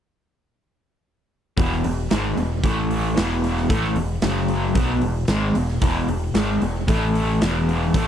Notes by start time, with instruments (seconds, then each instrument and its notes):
1.57 fingered electric bass E1, overdriven electric guitar E2 B2 E3, kick, open hi-hat
1.72 snare
1.84 fingered electric bass E1, overdriven electric guitar E2 B2, open hi-hat
2.11 fingered electric bass G#1, overdriven electric guitar G#2 D#3 G#3, snare, open hi-hat
2.37 fingered electric bass E1, overdriven electric guitar E2 B2, open hi-hat
2.64 fingered electric bass A1, overdriven electric guitar A2 E3 A3, kick, open hi-hat
2.91 open hi-hat
3.15 fingered electric bass E1, overdriven electric guitar E2 B2 E3, snare, open hi-hat
3.44 open hi-hat
3.57 snare
3.69 fingered electric bass A1, overdriven electric guitar A2 E3 A3, kick, open hi-hat
3.84 snare
3.96 fingered electric bass E1, overdriven electric guitar E2 B2, open hi-hat
4.22 fingered electric bass F#1, overdriven electric guitar F#2 C#3 F#3, snare, open hi-hat
4.48 open hi-hat
4.75 fingered electric bass B1, overdriven electric guitar B2 F#3 B3, kick, open hi-hat
5.01 fingered electric bass E1, overdriven electric guitar E2 B2, open hi-hat
5.28 fingered electric bass G#1, overdriven electric guitar G#2 D#3 G#3, snare, open hi-hat
5.55 fingered electric bass E1, overdriven electric guitar E2 B2, open hi-hat
5.68 snare
5.81 fingered electric bass E1, overdriven electric guitar E2 B2 E3, kick, open hi-hat
6.08 fingered electric bass E1, overdriven electric guitar E2 B2, open hi-hat
6.34 fingered electric bass G#1, overdriven electric guitar G#2 D#3 G#3, snare, open hi-hat
6.61 fingered electric bass E1, overdriven electric guitar E2 B2, open hi-hat
6.88 fingered electric bass A1, overdriven electric guitar A2 E3 A3, kick, open hi-hat
7.15 open hi-hat
7.41 fingered electric bass E1, overdriven electric guitar E2 B2 E3, snare, open hi-hat
7.69 open hi-hat
7.94 fingered electric bass A1, overdriven electric guitar A2 E3 A3, kick, open hi-hat